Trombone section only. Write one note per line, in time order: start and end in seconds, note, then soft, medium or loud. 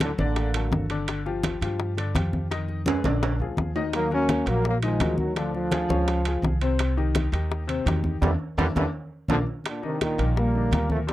0.03 0.11 A2 medium
0.03 0.10 D3 medium
0.20 0.87 D3 medium
0.20 0.87 A#3 medium
3.95 4.11 F#3 medium
3.95 4.11 A#3 loud
4.13 4.46 A#3 medium
4.13 4.46 C#4 loud
4.48 4.66 F#3 medium
4.48 4.66 A#3 medium
4.67 4.75 F#3 medium
4.67 4.76 A#3 medium
4.83 5.16 F3 medium
4.83 5.17 G#3 medium
5.19 5.35 D#3 medium
5.19 5.36 F#3 medium
5.37 5.54 D3 medium
5.37 5.54 F3 medium
5.55 6.04 D3 medium
5.55 6.58 F3 medium
8.21 8.30 D3 medium
8.21 8.30 E3 medium
8.21 8.30 G3 medium
8.58 8.66 D3 loud
8.58 8.66 E3 loud
8.58 8.67 G3 loud
8.76 8.85 D3 medium
8.76 8.85 E3 medium
8.76 8.84 G3 medium
9.29 9.38 A#2 medium
9.29 9.38 D3 loud
9.29 9.38 F3 medium
9.67 9.83 A#2 medium
9.67 9.83 D3 medium
9.84 10.00 C3 medium
9.84 10.01 D#3 medium
10.02 10.34 A#2 medium
10.02 10.34 D#3 medium
10.38 10.91 G3 medium
10.38 10.91 A#3 medium
10.91 10.99 F3 medium
10.91 11.00 A3 medium
11.09 11.13 D3 medium
11.09 11.13 G3 loud